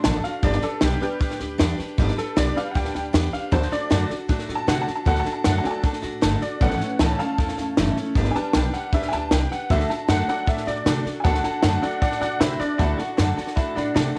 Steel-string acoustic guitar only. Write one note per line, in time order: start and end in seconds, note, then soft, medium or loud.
0.04 0.23 D3 medium
0.04 0.23 A3 medium
0.04 0.24 D4 medium
0.04 0.23 F#4 medium
0.04 0.22 A4 medium
0.23 0.42 D4 soft
0.23 0.43 F#4 medium
0.23 0.43 A4 medium
0.42 0.62 G3 medium
0.42 0.62 D4 medium
0.42 0.62 G4 loud
0.42 0.61 B4 loud
0.62 0.81 D4 soft
0.62 0.81 G4 medium
0.62 0.81 B4 soft
0.81 1.01 G3 medium
0.81 1.01 D4 medium
0.81 1.00 G4 medium
0.81 0.99 B4 loud
1.00 1.19 D4 soft
1.00 1.20 G4 medium
1.00 1.20 B4 medium
1.19 1.39 G3 medium
1.19 1.40 D4 medium
1.19 1.40 G4 medium
1.19 1.38 B4 medium
1.40 1.58 D4 soft
1.40 1.58 G4 medium
1.40 1.59 B4 medium
1.58 1.78 G3 loud
1.58 1.78 D4 loud
1.58 1.77 G4 loud
1.58 1.76 B4 loud
1.77 1.98 D4 medium
1.77 1.98 G4 medium
1.77 1.97 B4 medium
1.98 2.17 G3 loud
1.98 2.17 D4 loud
1.98 2.17 G4 loud
1.98 2.15 B4 loud
2.16 2.36 D4 soft
2.16 2.37 G4 soft
2.16 2.36 B4 medium
2.36 2.55 G3 medium
2.36 2.56 D4 medium
2.36 2.55 G4 medium
2.36 2.54 B4 loud
2.55 2.74 D4 soft
2.55 2.75 G4 medium
2.55 2.75 B4 medium
2.74 2.94 G3 medium
2.74 2.94 D4 medium
2.74 2.94 G4 medium
2.74 2.93 B4 medium
2.94 3.12 D4 soft
2.94 3.13 G4 soft
2.94 3.13 B4 medium
3.13 3.32 G3 medium
3.13 3.33 D4 loud
3.13 3.32 G4 medium
3.13 3.31 B4 loud
3.32 3.51 D4 soft
3.32 3.52 G4 medium
3.32 3.52 B4 medium
3.51 3.71 D3 medium
3.51 3.71 A3 medium
3.51 3.71 D4 medium
3.51 3.71 F#4 loud
3.51 3.69 A4 medium
3.70 3.90 D4 soft
3.70 3.90 F#4 soft
3.70 3.90 A4 medium
3.90 4.09 D3 loud
3.90 4.10 A3 medium
3.90 4.10 D4 medium
3.90 4.10 F#4 loud
3.90 4.09 A4 loud
4.10 4.28 D4 soft
4.10 4.29 F#4 medium
4.10 4.29 A4 medium
4.28 4.48 A3 medium
4.28 4.49 D4 medium
4.28 4.49 F#4 medium
4.28 4.47 A4 medium
4.48 4.67 D4 soft
4.48 4.67 F#4 medium
4.48 4.68 A4 medium
4.67 4.87 D3 medium
4.67 4.87 A3 medium
4.67 4.87 D4 medium
4.67 4.86 F#4 loud
4.67 4.85 A4 medium
4.86 5.05 D4 soft
4.86 5.06 F#4 medium
4.86 5.06 A4 medium
5.05 5.25 D3 medium
5.05 5.26 A3 medium
5.05 5.25 D4 medium
5.05 5.25 F#4 loud
5.05 5.23 A4 medium
5.24 5.44 D4 soft
5.24 5.45 F#4 medium
5.24 5.44 A4 medium
5.45 5.64 D3 medium
5.45 5.64 A3 loud
5.45 5.65 D4 loud
5.45 5.64 F#4 loud
5.45 5.62 A4 loud
5.63 5.82 D4 soft
5.63 5.83 F#4 medium
5.63 5.83 A4 medium
5.83 6.03 A3 medium
5.83 6.03 D4 medium
5.83 6.02 F#4 medium
5.83 6.01 A4 medium
6.02 6.22 D4 soft
6.02 6.22 F#4 medium
6.02 6.22 A4 medium
6.21 6.41 D3 medium
6.21 6.41 A3 loud
6.21 6.42 D4 loud
6.21 6.40 F#4 loud
6.21 6.40 A4 loud
6.41 6.61 D4 soft
6.41 6.61 F#4 medium
6.41 6.61 A4 medium
6.61 6.80 A2 medium
6.61 6.80 E3 medium
6.61 6.80 A3 medium
6.61 6.81 C#4 medium
6.61 6.81 E4 medium
6.61 6.80 A4 medium
6.81 7.01 A3 soft
6.81 7.01 C#4 soft
6.81 7.00 E4 soft
6.81 7.00 A4 soft
7.01 7.20 A2 medium
7.01 7.20 E3 medium
7.01 7.20 A3 loud
7.01 7.20 C#4 loud
7.01 7.19 E4 loud
7.01 7.18 A4 loud
7.20 7.37 A3 soft
7.20 7.38 C#4 soft
7.20 7.39 E4 soft
7.20 7.38 A4 medium
7.38 7.57 A3 medium
7.38 7.58 C#4 medium
7.38 7.58 E4 medium
7.38 7.57 A4 medium
7.58 7.77 A3 soft
7.58 7.78 C#4 soft
7.58 7.77 E4 medium
7.58 7.77 A4 medium
7.78 7.97 A2 loud
7.78 7.97 E3 loud
7.78 7.97 A3 loud
7.78 7.97 C#4 loud
7.78 7.97 E4 loud
7.78 7.96 A4 loud
7.97 8.16 A3 soft
7.97 8.16 C#4 medium
7.97 8.16 E4 medium
7.97 8.16 A4 medium
8.16 8.35 G3 loud
8.16 8.35 D4 loud
8.16 8.36 G4 loud
8.16 8.35 B4 loud
8.36 8.55 D4 soft
8.36 8.55 G4 medium
8.36 8.55 B4 medium
8.55 8.74 G3 medium
8.55 8.74 D4 medium
8.55 8.73 G4 medium
8.55 8.73 B4 loud
8.74 8.93 D4 soft
8.74 8.93 G4 soft
8.74 8.93 B4 medium
8.93 9.12 G3 medium
8.93 9.13 D4 medium
8.93 9.13 G4 medium
8.93 9.11 B4 medium
9.12 9.31 D4 soft
9.12 9.32 G4 medium
9.12 9.31 B4 medium
9.32 9.51 G3 medium
9.32 9.51 D4 medium
9.32 9.51 G4 medium
9.32 9.49 B4 loud
9.50 9.70 D4 soft
9.50 9.71 G4 soft
9.50 9.70 B4 medium
9.70 9.89 D3 medium
9.70 9.90 A3 medium
9.70 9.90 D4 medium
9.70 9.90 F#4 medium
9.70 9.88 A4 loud
9.89 10.08 D4 soft
9.89 10.08 F#4 medium
9.89 10.09 A4 medium
10.08 10.28 D3 medium
10.08 10.28 A3 loud
10.08 10.28 D4 loud
10.08 10.27 F#4 medium
10.08 10.26 A4 loud
10.27 10.46 D4 soft
10.27 10.47 F#4 medium
10.27 10.47 A4 medium
10.46 10.66 A3 medium
10.46 10.67 D4 medium
10.46 10.67 F#4 medium
10.46 10.66 A4 medium
10.67 10.85 D4 soft
10.67 10.86 F#4 medium
10.67 10.86 A4 medium
10.86 11.05 D3 medium
10.86 11.05 A3 medium
10.86 11.06 D4 medium
10.86 11.04 F#4 medium
10.86 11.04 A4 loud
11.05 11.24 D4 soft
11.05 11.25 F#4 medium
11.05 11.24 A4 medium
11.24 11.44 D3 medium
11.24 11.44 A3 medium
11.24 11.44 D4 medium
11.24 11.44 F#4 medium
11.24 11.43 A4 loud
11.44 11.63 D4 soft
11.44 11.63 F#4 medium
11.44 11.63 A4 medium
11.63 11.82 D3 loud
11.63 11.82 A3 loud
11.63 11.83 D4 loud
11.63 11.83 F#4 loud
11.63 11.81 A4 medium
11.82 12.02 D4 medium
11.82 12.02 F#4 medium
11.82 12.02 A4 medium
12.02 12.21 A3 medium
12.02 12.22 D4 medium
12.02 12.21 F#4 medium
12.02 12.20 A4 medium
12.21 12.40 D4 soft
12.21 12.40 F#4 medium
12.21 12.40 A4 medium
12.41 12.60 D3 medium
12.41 12.60 A3 medium
12.41 12.60 D4 loud
12.41 12.60 F#4 medium
12.41 12.59 A4 medium
12.60 12.80 D4 soft
12.60 12.80 F#4 medium
12.60 12.79 A4 medium
12.80 12.99 D3 medium
12.80 12.99 A3 medium
12.80 13.00 D4 medium
12.80 12.98 F#4 medium
12.80 12.97 A4 medium
12.98 13.17 D4 soft
12.98 13.18 F#4 soft
12.98 13.18 A4 medium
13.17 13.37 D3 medium
13.17 13.37 A3 medium
13.17 13.37 D4 medium
13.17 13.37 F#4 loud
13.17 13.35 A4 medium
13.36 13.56 D4 soft
13.36 13.57 F#4 medium
13.36 13.56 A4 medium
13.57 13.76 A3 medium
13.57 13.76 D4 medium
13.57 13.76 F#4 medium
13.57 13.75 A4 medium
13.76 13.96 D4 soft
13.76 13.96 F#4 medium
13.76 13.95 A4 medium
13.96 14.15 D3 medium
13.96 14.15 A3 medium
13.96 14.15 D4 medium
13.96 14.14 F#4 medium
13.96 14.13 A4 medium
14.14 14.19 F#4 soft
14.14 14.19 A4 medium